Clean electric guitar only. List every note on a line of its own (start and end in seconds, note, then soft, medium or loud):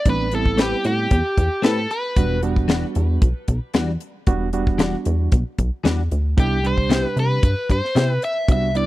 0.57 0.74 A3 medium
0.57 0.74 C4 medium
0.57 0.75 G4 medium
0.57 0.75 B4 medium
1.62 1.79 A3 medium
1.62 1.79 C4 medium
1.62 1.80 G4 medium
1.62 1.80 B4 medium
2.68 2.85 E3 medium
2.68 2.85 G3 medium
2.68 2.85 D4 medium
2.68 2.86 F#4 medium
3.74 3.90 E3 medium
3.74 3.91 G3 medium
3.74 3.91 D4 medium
3.74 3.91 F#4 medium
4.78 4.95 E3 medium
4.78 4.96 G3 medium
4.78 4.96 D4 medium
4.78 4.96 F#4 medium
5.84 6.00 E3 medium
5.84 6.01 G3 medium
5.84 6.01 D4 medium
5.84 6.01 F#4 medium
6.89 7.06 C3 medium
6.89 7.06 B3 medium
6.89 7.07 E4 medium
6.89 7.07 G4 medium
7.95 8.11 C3 medium
7.95 8.12 B3 medium
7.95 8.12 E4 medium
7.95 8.12 G4 medium